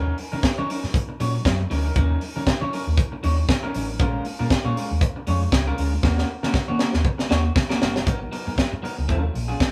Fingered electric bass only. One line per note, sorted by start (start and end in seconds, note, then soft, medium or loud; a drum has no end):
0.00 0.11 D#2 loud
0.33 0.41 D#3 loud
0.58 0.66 D#3 loud
0.84 0.91 G#2 medium
1.20 1.38 A#2 medium
1.45 1.63 F#2 loud
1.71 1.89 D2 loud
1.96 2.14 D#2 loud
2.36 2.44 D#3 medium
2.62 2.70 D#3 medium
2.87 2.95 D#2 medium
3.24 3.42 D#2 loud
3.76 4.00 A1 loud
4.00 4.18 A#1 loud
4.40 4.48 A#2 medium
4.65 4.73 A#2 loud
4.91 4.99 D#2 medium
5.28 5.45 F2 loud
5.52 5.70 C#2 medium
5.78 5.96 D2 loud
6.03 6.21 D#2 loud
6.43 6.51 D#3 medium
6.54 muted fingered electric bass stroke medium
6.69 6.77 D#3 loud
6.94 7.02 D#2 medium
7.31 7.49 D#2 medium
7.82 8.00 G1 loud
8.07 8.25 G#1 loud
8.47 8.55 G#2 medium
8.58 muted fingered electric bass stroke soft
8.73 8.80 G#2 loud
8.98 9.06 C#2 medium
9.09 9.27 D#2 medium
9.35 9.53 A#1 medium
9.61 9.72 G#1 medium